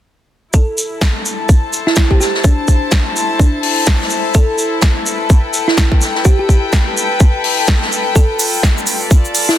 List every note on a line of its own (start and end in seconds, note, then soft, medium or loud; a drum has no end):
0.54 8.16 E4 medium
0.54 0.92 A4 medium
0.54 kick loud
0.54 shaker medium
0.78 shaker medium
0.99 9.58 A4 medium
0.99 kick loud
0.99 snare loud
0.99 shaker medium
1.25 shaker medium
1.40 5.45 A5 medium
1.46 5.21 C5 medium
1.46 kick loud
1.46 shaker medium
1.73 shaker medium
1.87 1.93 E4 medium
1.87 snare soft
1.96 2.06 E4 medium
1.96 kick loud
1.96 snare loud
1.96 shaker medium
2.11 2.17 G4 medium
2.11 kick medium
2.20 2.29 G4 medium
2.20 snare soft
2.20 shaker medium
2.34 snare soft
2.44 3.12 D4 medium
2.44 kick loud
2.44 shaker medium
2.68 kick medium
2.68 shaker medium
2.91 kick loud
2.91 snare loud
2.91 shaker medium
3.16 shaker medium
3.39 4.07 D4 medium
3.39 kick loud
3.39 shaker medium
3.63 open hi-hat medium
3.86 kick loud
3.86 snare loud
3.86 shaker medium
4.01 snare soft
4.10 shaker medium
4.34 4.72 A4 medium
4.34 kick loud
4.34 shaker medium
4.58 shaker medium
4.81 kick loud
4.81 snare loud
4.81 shaker medium
5.05 9.58 B4 medium
5.05 shaker medium
5.29 9.00 G5 medium
5.29 kick loud
5.29 shaker medium
5.53 shaker medium
5.68 5.74 E4 medium
5.68 snare soft
5.77 5.87 E4 medium
5.77 kick loud
5.77 snare loud
5.77 shaker medium
5.92 kick medium
6.01 snare soft
6.01 shaker medium
6.15 snare soft
6.25 6.36 G4 medium
6.25 kick loud
6.25 shaker medium
6.39 7.05 G4 medium
6.49 kick medium
6.49 shaker medium
6.73 kick loud
6.73 snare loud
6.73 shaker loud
6.97 shaker medium
7.20 kick loud
7.20 shaker medium
7.44 open hi-hat medium
7.68 kick loud
7.68 snare loud
7.68 shaker medium
7.82 snare medium
7.92 shaker medium
8.16 9.58 F4 medium
8.16 8.54 A4 medium
8.16 kick loud
8.16 shaker soft
8.16 shaker medium
8.39 open hi-hat loud
8.39 shaker loud
8.39 shaker medium
8.53 shaker soft
8.63 kick loud
8.63 snare loud
8.63 shaker medium
8.78 shaker soft
8.86 open hi-hat medium
8.86 shaker medium
9.01 9.58 D5 medium
9.01 shaker soft
9.11 9.58 A5 medium
9.11 kick loud
9.11 shaker medium
9.25 shaker soft
9.35 open hi-hat loud
9.35 shaker medium
9.49 9.55 E4 medium
9.49 snare soft
9.49 shaker soft